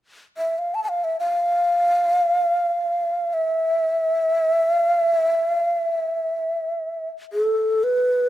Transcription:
0.37 0.60 E5 medium
0.59 0.76 F5 medium
0.75 0.83 A5 medium
0.84 0.90 A5 soft
0.89 1.06 F5 medium
1.04 1.19 E5 soft
1.20 3.35 F5 medium
3.33 4.73 E5 medium
4.73 5.02 F5 medium
5.02 5.50 E5 medium
5.50 5.79 F5 medium
5.79 7.09 E5 medium
7.33 7.85 A4 medium
7.84 8.29 B4 medium

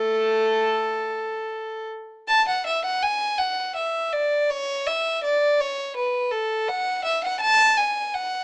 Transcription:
0.00 1.05 A3 medium
0.00 1.85 A4 medium
2.28 2.46 A5 medium
2.49 2.66 F#5 medium
2.67 2.84 E5 medium
2.85 3.03 F#5 medium
3.03 3.40 G#5 medium
3.38 3.76 F#5 medium
3.76 4.12 E5 medium
4.13 4.50 D5 medium
4.50 4.87 C#5 medium
4.87 5.24 E5 medium
5.24 5.60 D5 medium
5.61 5.97 C#5 medium
5.97 6.32 B4 medium
6.32 6.68 A4 medium
6.68 7.05 F#5 medium
7.05 7.23 E5 medium
7.24 7.42 F#5 medium
7.41 7.77 A5 loud
7.77 8.15 G#5 medium
8.14 8.44 F#5 medium

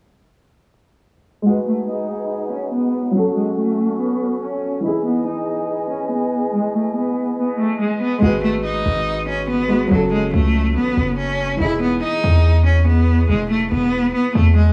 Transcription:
1.42 3.10 G#3 medium
1.42 3.14 D#4 medium
1.42 3.12 F#4 medium
1.42 3.14 G#4 medium
1.42 3.14 B4 medium
1.42 4.81 F#5 medium
1.46 1.63 G#3 medium
1.46 3.14 B4 medium
1.67 1.84 A3 medium
1.89 2.48 D#4 medium
2.52 2.69 C#4 medium
2.73 3.13 B3 medium
3.11 4.79 F#3 medium
3.11 4.81 C#4 medium
3.11 4.83 C#4 medium
3.11 4.83 F#4 medium
3.11 4.83 A4 medium
3.15 3.32 F#3 medium
3.15 4.83 A4 medium
3.37 3.53 G#3 medium
3.58 3.97 A3 medium
4.00 4.40 B3 medium
4.42 4.82 C#4 medium
4.80 8.16 E3 medium
4.80 8.18 D#4 medium
4.80 5.01 E4 medium
4.80 8.19 G#4 medium
4.80 8.19 B4 medium
4.80 8.19 D#5 medium
4.80 8.19 G#5 medium
4.88 8.20 G#4 medium
5.05 5.22 B3 medium
5.27 5.86 D#4 medium
5.90 6.07 C#4 medium
6.11 6.51 B3 medium
6.53 6.70 G#3 medium
6.75 6.91 A3 medium
6.96 7.35 B3 medium
7.38 7.55 B3 medium
7.59 7.76 A3 medium
7.80 7.97 G#3 medium
8.01 8.18 B3 medium
8.19 8.83 G#1 loud
8.19 9.65 G#3 medium
8.19 8.39 G#3 loud
8.19 9.67 F#4 medium
8.26 9.69 B4 medium
8.44 8.60 A3 medium
8.65 9.24 D#4 medium
8.86 9.87 G#1 loud
9.28 9.45 C#4 medium
9.49 9.89 B3 medium
9.68 9.90 G#3 medium
9.68 9.91 F#4 soft
9.68 9.92 B4 medium
9.88 10.32 F#1 loud
9.88 11.55 F#3 medium
9.88 10.08 F#3 medium
9.88 11.57 C#4 medium
9.95 11.59 A4 medium
10.13 10.30 G#3 medium
10.34 10.78 C#2 loud
10.34 10.73 A3 medium
10.76 10.96 A1 loud
10.76 11.16 B3 medium
10.97 11.58 F#1 loud
11.18 11.58 C#4 medium
11.56 12.01 E1 loud
11.56 14.73 E3 medium
11.56 14.73 D#4 medium
11.61 11.77 E4 medium
11.61 14.73 G#4 medium
11.81 11.98 B3 medium
12.03 12.62 D#4 medium
12.24 13.25 E2 loud
12.66 12.83 C#4 medium
12.87 13.27 B3 medium
13.29 13.70 E1 loud
13.29 13.46 G#3 medium
13.51 13.67 A3 medium
13.71 14.12 E1 loud
13.71 14.11 B3 medium
14.14 14.31 B3 medium
14.35 14.73 E2 loud
14.35 14.52 A3 medium
14.56 14.73 G#3 medium

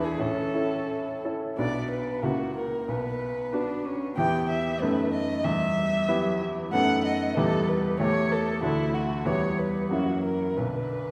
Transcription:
0.00 0.22 E2 medium
0.00 0.16 D4 soft
0.00 0.17 E4 soft
0.00 0.22 E4 medium
0.00 0.17 G#4 soft
0.00 0.21 G#4 medium
0.19 0.54 A2 soft
0.19 1.24 C#4 soft
0.19 1.24 A4 medium
0.54 1.20 C#4 soft
0.54 1.20 E4 soft
0.54 1.20 A4 soft
1.25 1.55 C#4 soft
1.25 1.55 E4 soft
1.25 1.55 A4 soft
1.58 2.21 B1 soft
1.58 2.24 B3 soft
1.58 2.19 B3 soft
1.58 2.19 D4 soft
1.58 2.20 F#4 soft
1.58 1.88 D5 medium
1.90 2.26 B4 soft
2.23 2.86 C#2 soft
2.23 2.84 A#3 soft
2.23 2.90 A#3 soft
2.23 2.84 E4 soft
2.23 2.84 F#4 soft
2.23 2.55 F#4 soft
2.56 2.90 A#4 soft
2.88 3.51 B1 soft
2.88 3.55 B3 soft
2.88 3.86 B4 medium
3.53 4.13 B3 soft
3.53 3.87 D4 soft
3.53 4.14 D4 soft
3.53 4.14 F#4 soft
3.85 4.17 C#4 soft
4.17 4.79 E2 soft
4.17 4.77 B3 soft
4.17 4.80 B3 soft
4.17 4.78 E4 soft
4.17 4.78 G4 soft
4.17 4.47 G5 medium
4.49 4.83 E5 medium
4.81 5.43 F#2 soft
4.81 5.47 A3 soft
4.81 5.41 B3 soft
4.81 5.42 D#4 soft
4.81 5.42 A4 soft
4.81 5.12 B4 medium
5.13 5.46 D#5 medium
5.44 6.07 E2 medium
5.44 6.10 G3 soft
5.44 6.40 E5 medium
6.08 6.42 F#3 medium
6.08 6.69 B3 soft
6.08 6.69 E4 soft
6.08 6.69 G4 soft
6.40 6.72 E3 medium
6.73 7.35 F#2 medium
6.73 7.38 A3 soft
6.73 7.33 B3 soft
6.73 7.33 D#4 soft
6.73 7.33 A4 soft
6.73 7.03 F#5 medium
7.05 7.36 D#5 medium
7.36 7.98 E2 medium
7.36 7.98 G3 soft
7.36 7.96 B3 soft
7.36 7.96 E4 soft
7.36 7.96 G4 soft
7.36 7.70 A4 medium
7.68 7.99 B4 medium
7.99 8.61 E2 medium
7.99 8.61 A3 soft
7.99 8.59 A3 soft
7.99 8.59 G4 soft
7.99 8.60 A4 soft
7.99 8.33 C#5 medium
8.31 8.62 A4 medium
8.62 9.24 D2 soft
8.62 9.28 A3 soft
8.62 9.22 D4 soft
8.62 8.96 E4 medium
8.62 9.22 F#4 soft
8.62 9.23 A4 soft
8.94 9.27 F#4 medium
9.26 9.89 E2 soft
9.26 9.92 G3 soft
9.26 9.87 B3 soft
9.26 9.87 E4 soft
9.26 9.87 G4 soft
9.26 9.60 C#5 medium
9.58 9.90 B4 medium
9.91 10.55 F#2 soft
9.91 10.57 F#3 soft
9.91 10.53 A#3 soft
9.91 10.53 E4 soft
9.91 10.23 F#4 soft
9.91 10.54 F#4 soft
10.23 10.58 A#4 soft
10.57 11.11 B1 soft
10.57 11.11 D3 soft
10.57 11.11 B4 soft

